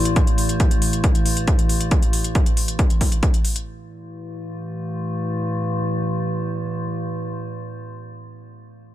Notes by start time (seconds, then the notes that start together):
Already playing: A2 E3 A3 A4 E5 E6
0.05 closed hi-hat
0.16 kick, closed hi-hat
0.27 closed hi-hat
0.38 open hi-hat
0.49 closed hi-hat
0.60 kick, closed hi-hat
0.71 closed hi-hat
0.82 open hi-hat
0.93 closed hi-hat
1.04 kick, closed hi-hat
1.15 closed hi-hat
1.26 open hi-hat
1.37 closed hi-hat
1.48 kick, closed hi-hat
1.59 closed hi-hat
1.69 open hi-hat
1.81 closed hi-hat
1.91 kick, closed hi-hat
2.02 closed hi-hat
2.13 open hi-hat
2.24 closed hi-hat
2.35 kick, closed hi-hat
2.46 closed hi-hat
2.57 open hi-hat
2.68 closed hi-hat
2.79 kick, closed hi-hat
2.90 closed hi-hat
3.01 kick, open hi-hat
3.12 closed hi-hat
3.23 kick, closed hi-hat
3.34 closed hi-hat
3.45 open hi-hat
3.56 closed hi-hat
3.67 A2 E3